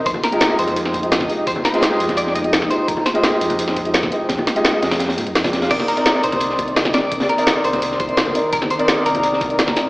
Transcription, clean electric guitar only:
X:1
M:4/4
L:1/8
Q:1/4=170
K:Cm
V:1 name="Clean electric guitar"
c B2 c3 e2 | c c3 d e2 c | B c6- c- | c z6 z |
d B2 c3 e d- | d B2 c2 c3 | B c2 B4- B |]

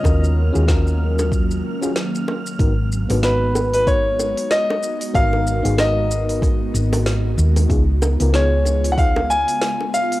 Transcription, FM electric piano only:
X:1
M:4/4
L:1/16
Q:"Swing 16ths" 1/4=94
K:G#dor
V:1 name="FM electric piano"
[CEFA]3 [CEFG] [CEFA]6- [CEFA] [CEFG] z4 | [B,DFA] z2 [B,DFB] [B,DFB]4 [B,DFA] z6 z | [B,DFA]3 [B,DFG] [B,DFA]12 | [B,DEG] z2 [B,DEA] [B,DEG]4 [B,DEG] z6 z |]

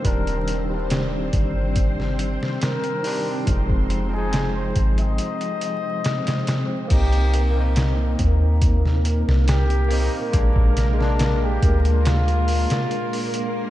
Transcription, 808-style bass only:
X:1
M:4/4
L:1/16
Q:1/4=70
K:Cm
V:1 name="808-style bass" clef=bass
E,,,6 G,,,4- G,,, z4 z | F,,,6 A,,,2 z8 | C,,6 E,,4- E,, C,,4 z | B,,,6 D,,4- D,, z4 z |]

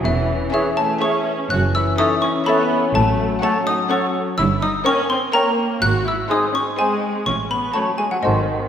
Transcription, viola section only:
X:1
M:3/4
L:1/16
Q:1/4=124
K:F#dor
V:1 name="Viola section"
E,4 E,2 A,2 C4 | F2 E2 D2 C2 B,4 | A,4 A,2 D2 C2 z2 | E2 D2 _D2 ^B,2 _B,4 |
F2 E2 D2 C2 G,4 | C2 B,2 A,2 G, F, D,4 |]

